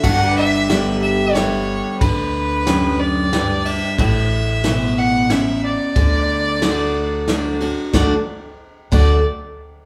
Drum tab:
CC |x-----|------|------|------|
RD |--x-x-|x-x-xx|x-x-x-|x-x-xx|
SD |--o-o-|--o-o-|--o-o-|--o-o-|
BD |o-----|o-----|o-----|o-----|

CC |---x--|
RD |------|
SD |o-----|
BD |o--o--|